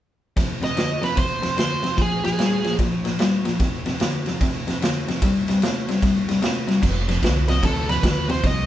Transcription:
0.36 0.60 F2 medium
0.36 0.60 C3 medium
0.36 kick medium
0.36 snare soft
0.36 ride medium
0.62 0.75 F2 medium
0.62 0.76 C3 medium
0.62 1.05 D#5 medium
0.62 snare soft
0.62 ride soft
0.77 1.00 F2 medium
0.77 1.00 D3 medium
0.77 snare medium
0.77 ride medium
1.02 1.15 F2 medium
1.02 1.16 C3 medium
1.02 1.18 B4 medium
1.02 snare soft
1.02 ride soft
1.16 1.40 F2 medium
1.16 1.41 C3 medium
1.16 1.58 C5 medium
1.16 kick medium
1.16 snare soft
1.16 ride medium
1.42 1.56 F2 medium
1.42 1.56 C3 medium
1.42 snare soft
1.42 ride medium
1.57 1.81 F2 medium
1.57 1.81 D3 medium
1.57 2.00 C5 medium
1.57 snare medium
1.57 ride medium
1.83 1.97 F2 medium
1.83 1.97 C3 medium
1.83 snare soft
1.83 ride soft
1.97 2.21 A#2 medium
1.97 2.21 F3 medium
1.97 kick medium
1.97 snare soft
1.97 ride medium
2.01 2.24 G#4 medium
2.24 2.37 A#2 medium
2.24 2.37 F3 medium
2.24 2.76 G#4 medium
2.24 snare soft
2.24 ride soft
2.39 2.62 A#2 medium
2.39 2.62 G3 medium
2.39 snare medium
2.39 ride medium
2.64 2.78 A#2 soft
2.64 2.78 F3 medium
2.64 snare soft
2.64 ride soft
2.79 3.02 A#2 medium
2.79 3.03 F3 medium
2.79 kick medium
2.79 snare soft
2.79 ride medium
3.04 3.18 A#2 medium
3.04 3.18 F3 medium
3.04 snare soft
3.04 ride soft
3.19 3.43 A#2 medium
3.19 3.43 G3 medium
3.19 snare medium
3.19 ride medium
3.45 3.58 A#2 medium
3.45 3.59 F3 medium
3.45 snare soft
3.45 ride soft
3.59 3.83 F2 medium
3.59 3.83 C3 medium
3.59 kick medium
3.59 snare soft
3.59 ride medium
3.86 3.99 F2 medium
3.86 3.99 C3 medium
3.86 snare soft
3.86 ride soft
4.00 4.24 F2 medium
4.00 4.24 D3 medium
4.00 snare medium
4.00 ride medium
4.26 4.40 F2 medium
4.26 4.40 C3 medium
4.26 snare soft
4.26 ride soft
4.41 4.64 F2 medium
4.41 4.65 C3 medium
4.41 kick medium
4.41 snare soft
4.41 ride medium
4.67 4.80 F2 medium
4.67 4.80 C3 medium
4.67 snare soft
4.67 ride medium
4.82 5.05 F2 medium
4.82 5.05 D3 medium
4.82 snare medium
4.82 ride medium
5.08 5.21 F2 medium
5.08 5.21 C3 medium
5.08 snare soft
5.08 ride medium
5.22 5.45 C3 medium
5.22 5.46 G3 medium
5.22 kick medium
5.22 snare soft
5.22 ride medium
5.48 5.61 C3 medium
5.48 5.61 G3 medium
5.48 snare soft
5.48 ride soft
5.62 5.86 C3 medium
5.62 5.86 A3 medium
5.62 snare medium
5.62 ride medium
5.89 6.01 C3 medium
5.89 6.02 G3 medium
5.89 snare soft
5.89 ride soft
6.02 6.25 C3 medium
6.02 6.26 G3 medium
6.02 kick medium
6.02 snare soft
6.02 ride medium
6.29 6.41 C3 medium
6.29 6.42 G3 medium
6.29 snare soft
6.29 ride medium
6.42 6.65 C3 medium
6.42 6.66 A3 medium
6.42 snare medium
6.42 ride medium
6.67 6.81 C3 medium
6.67 6.81 G3 medium
6.67 snare soft
6.67 ride soft
6.82 7.17 F1 medium
6.82 7.06 F2 medium
6.82 7.06 C3 medium
6.82 kick medium
6.82 snare soft
6.82 crash medium
7.08 7.22 F2 medium
7.08 7.22 C3 medium
7.08 snare soft
7.08 ride medium
7.23 7.57 C2 medium
7.23 7.46 F2 medium
7.23 7.47 D3 medium
7.23 kick medium
7.23 snare medium
7.23 ride medium
7.48 7.62 F2 medium
7.48 7.62 C3 medium
7.48 7.64 D#5 medium
7.48 snare soft
7.48 ride medium
7.63 7.97 D2 medium
7.63 7.86 F2 medium
7.63 7.87 C3 medium
7.63 7.90 A4 medium
7.63 kick medium
7.63 snare soft
7.63 ride medium
7.89 8.02 F2 medium
7.89 8.02 C3 medium
7.89 8.30 B4 medium
7.89 snare soft
7.89 ride medium
8.03 8.38 D#2 medium
8.03 8.27 F2 medium
8.03 8.27 D3 medium
8.03 kick medium
8.03 snare medium
8.03 ride medium
8.29 8.42 F2 medium
8.29 8.43 C3 medium
8.29 8.45 C5 medium
8.29 snare soft
8.29 ride medium
8.44 8.66 C2 medium
8.44 8.66 F2 medium
8.44 8.66 C3 medium
8.44 8.66 D#5 medium
8.44 kick medium
8.44 snare soft
8.44 ride medium

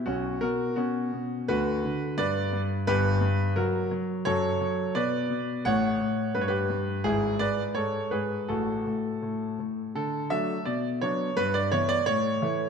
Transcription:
0.06 0.40 B1 medium
0.06 0.40 B2 medium
0.06 0.39 C#4 medium
0.06 0.37 F#4 medium
0.41 0.75 B2 medium
0.41 0.74 F#4 medium
0.41 0.76 A#4 medium
0.76 1.11 B2 medium
0.76 1.45 C#4 medium
0.76 1.44 F#4 medium
1.13 1.47 B2 soft
1.48 1.83 D2 medium
1.48 1.82 D3 medium
1.48 2.15 F#4 medium
1.48 2.14 B4 loud
1.84 2.17 D3 medium
2.18 2.51 G2 medium
2.18 2.84 B4 medium
2.18 2.59 D5 loud
2.53 2.86 G2 medium
2.87 3.21 G1 medium
2.87 3.20 G2 medium
2.87 3.53 G4 medium
2.87 3.52 B4 loud
3.21 3.55 G2 medium
3.56 3.90 F#3 medium
3.56 3.89 F#4 medium
3.56 3.91 A#4 medium
3.91 4.24 F#3 medium
4.25 4.60 F#2 medium
4.25 4.60 F#3 medium
4.25 4.92 A4 medium
4.25 4.95 C#5 loud
4.61 4.95 F#3 medium
4.95 5.28 B2 medium
4.95 5.62 B4 medium
4.95 5.61 D5 medium
5.30 5.64 B2 medium
5.65 5.99 A1 medium
5.65 5.99 A2 medium
5.65 6.31 C#5 medium
5.65 6.35 F#5 loud
6.00 6.34 A2 medium
6.35 6.68 G2 medium
6.35 6.42 B4 medium
6.41 6.49 C#5 medium
6.48 7.01 G4 medium
6.48 7.04 B4 medium
6.70 7.04 G2 medium
7.04 7.39 G#1 medium
7.04 7.38 G#2 medium
7.04 7.38 E4 medium
7.04 7.36 G#4 loud
7.39 7.74 G#2 medium
7.39 7.74 B4 medium
7.39 7.61 D5 loud
7.75 8.10 G#2 soft
7.75 8.10 A4 medium
7.75 8.12 C#5 medium
8.11 8.48 G#2 soft
8.11 8.47 G#4 medium
8.11 8.49 B4 medium
8.49 8.85 A1 medium
8.49 8.84 A2 medium
8.49 9.56 F#4 medium
8.49 9.59 A4 medium
8.86 9.21 A2 soft
9.22 9.58 A2 medium
9.59 9.94 A2 soft
9.95 10.30 D3 medium
9.95 10.28 A4 medium
10.30 10.56 F#3 medium
10.30 10.56 A3 medium
10.30 10.56 D4 medium
10.30 10.66 E5 loud
10.65 11.00 B2 medium
10.65 10.87 D5 medium
11.01 11.27 F#3 soft
11.01 11.28 B3 soft
11.01 11.28 D4 medium
11.01 11.37 C#5 medium
11.37 11.71 G2 medium
11.37 11.54 B4 loud
11.54 11.72 D5 loud
11.72 11.97 E3 medium
11.72 11.97 B3 medium
11.72 11.97 E4 medium
11.72 11.89 C#5 loud
11.89 12.06 D5 loud
12.06 12.40 A2 medium
12.06 12.69 C#5 loud
12.42 12.66 E3 medium
12.42 12.67 A3 medium
12.42 12.67 E4 medium

